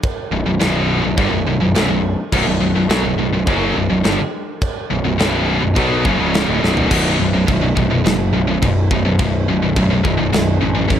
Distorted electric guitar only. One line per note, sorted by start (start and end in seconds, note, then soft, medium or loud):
0.32 0.45 B1 medium
0.32 0.45 F#2 medium
0.46 0.59 B1 medium
0.46 0.60 F#2 medium
0.60 1.02 B1 loud
0.60 1.03 F#2 loud
0.60 1.03 B2 loud
1.03 1.17 B1 medium
1.03 1.18 F#2 medium
1.17 1.31 G2 medium
1.17 1.32 D3 loud
1.32 1.46 B1 medium
1.32 1.46 F#2 medium
1.47 1.60 B1 medium
1.47 1.60 F#2 medium
1.61 1.74 B1 medium
1.61 1.74 F#2 medium
1.75 1.89 B1 loud
1.75 1.89 F#2 loud
1.90 2.13 B1 medium
1.90 2.13 F#2 medium
2.33 2.45 B1 loud
2.33 2.46 F#2 loud
2.46 2.59 B1 medium
2.46 2.60 F#2 medium
2.60 2.74 B1 medium
2.60 2.74 F#2 medium
2.75 2.89 B1 medium
2.75 2.89 F#2 medium
2.89 3.03 B2 loud
2.89 3.03 F#3 loud
3.04 3.17 B1 medium
3.04 3.17 F#2 medium
3.18 3.31 B1 medium
3.18 3.32 F#2 medium
3.33 3.46 B1 medium
3.33 3.46 F#2 medium
3.47 3.75 F#2 loud
3.47 3.75 C#3 loud
3.47 3.75 F#3 medium
3.76 3.88 B1 medium
3.76 3.88 F#2 medium
3.89 4.03 B1 medium
3.89 4.04 F#2 medium
4.04 4.17 G2 loud
4.04 4.18 D3 loud
4.90 5.03 B1 medium
4.90 5.03 F#2 medium
5.04 5.17 B1 medium
5.04 5.17 F#2 medium
5.18 5.60 B1 loud
5.18 5.60 F#2 loud
5.18 5.61 B2 loud
5.61 5.76 B1 medium
5.61 5.75 F#2 medium
5.75 6.03 B2 medium
5.75 6.04 F#3 medium
5.75 6.04 B3 medium
6.04 6.18 F#2 loud
6.04 6.18 C#3 medium
6.19 6.46 C#2 medium
6.19 6.47 G#2 loud
6.19 6.47 C#3 loud
6.47 6.61 D2 loud
6.47 6.61 A2 loud
6.62 6.89 B1 medium
6.62 6.89 F#2 loud
6.62 6.90 B2 loud
6.90 7.17 B1 loud
6.90 7.17 F#2 loud
6.90 7.18 B2 loud
7.19 7.33 B1 medium
7.19 7.32 F#2 medium
7.34 7.46 B1 medium
7.34 7.47 F#2 medium
7.47 7.61 B1 medium
7.47 7.61 F#2 medium
7.62 7.75 B1 medium
7.62 7.75 F#2 medium
7.76 7.90 B1 medium
7.76 7.90 F#2 medium
7.91 8.04 B1 medium
7.91 8.04 F#2 medium
8.05 8.31 B1 medium
8.05 8.31 F#2 medium
8.33 8.47 B1 medium
8.33 8.46 F#2 medium
8.48 8.61 B1 medium
8.48 8.61 F#2 loud
8.62 8.88 B1 medium
8.62 8.88 F#2 medium
8.91 9.04 B1 medium
8.91 9.04 F#2 medium
9.05 9.18 B1 medium
9.05 9.18 F#2 medium
9.19 9.45 B1 medium
9.19 9.45 F#2 medium
9.49 9.62 B1 medium
9.49 9.61 F#2 medium
9.63 9.75 B1 medium
9.63 9.76 F#2 medium
9.76 9.89 B1 medium
9.76 9.89 F#2 loud
9.90 10.03 B1 medium
9.90 10.02 F#2 medium
10.04 10.17 B1 medium
10.04 10.16 F#2 loud
10.17 10.31 B1 medium
10.17 10.32 F#2 medium
10.32 10.58 B1 medium
10.32 10.59 F#2 medium
10.61 10.74 B1 medium
10.61 10.73 F#2 medium
10.75 10.87 B1 medium
10.75 10.88 F#2 loud
10.88 11.00 B1 medium
10.88 11.00 F#2 loud